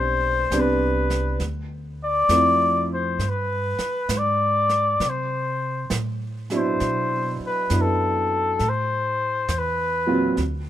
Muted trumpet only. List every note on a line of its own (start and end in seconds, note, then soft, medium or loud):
0.00 0.61 C5 medium
0.60 1.45 B4 medium
2.04 2.87 D5 medium
2.94 3.30 C5 medium
3.28 4.19 B4 medium
4.18 5.11 D5 medium
5.09 5.95 C5 medium
6.57 7.39 C5 medium
7.46 7.83 B4 medium
7.81 8.71 A4 medium
8.69 9.60 C5 medium
9.59 10.43 B4 medium